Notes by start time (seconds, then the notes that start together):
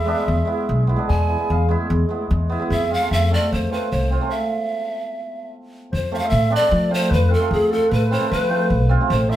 Already playing: E2 E5
0.05 G#3 B3 D4
0.28 E2
0.45 G#3 B3 E4
0.69 B1
0.87 B3 E4
0.96 G#3 B3 D4
1.08 E2 G#5
1.28 B3 E4
1.38 G#3 B3 E4
1.50 E2 F5
1.69 G#3 B3 E4
1.90 E2
2.09 G#3 B3 E4
2.31 E2
2.50 B3 E4
2.60 G#3 B3 E4
2.70 F2 E5
2.90 C4 F4 F5
3.00 A3 C4 F4
3.11 F2 E5
3.30 A3 C4 F4 D5
3.51 F2 C5
3.70 A3 C4 F4 B4
3.92 C2 C5
4.10 C4 F4
4.21 A3 C4 F4
4.30 E5
5.92 F2 C5
6.12 A3 C4 F4 E5
6.19 F5
6.25 E5
6.29 A2 E5
6.50 C4 D4 D5
6.56 D5
6.60 A3 C4 D4
6.71 F3
6.89 A3 C4 F4 C5
6.94 C5
7.09 F2 B4
7.30 C4 F4 A4
7.34 A4
7.40 A3 C4 F4
7.51 F2 G#4
7.70 A3 C4 F4 A4
7.89 A2 B4
7.96 A4
8.04 B4
8.11 C4 F4 C5
8.20 A3 C4 F4
8.29 F3 B4
8.49 A3 C4 F4
8.70 B1
8.89 C4 F4
9.00 A3 C4 F4
9.08 A1 C5
9.28 A3 C4 E4 E5